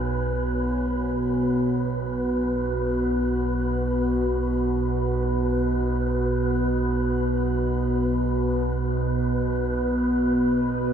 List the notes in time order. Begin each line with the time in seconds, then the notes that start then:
Already playing: B1 B2 F#4 B4 C#5 G#5
4.07 B3 B4
7.35 B4